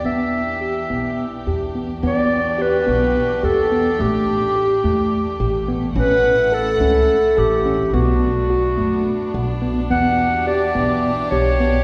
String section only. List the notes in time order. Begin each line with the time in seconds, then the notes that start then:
Already playing: D4 G4
0.04 E3
2.01 E3 D4 F#4 G4
4.00 A3
5.95 E4 F#5
7.94 B3 D4
9.90 E3 F#4 G4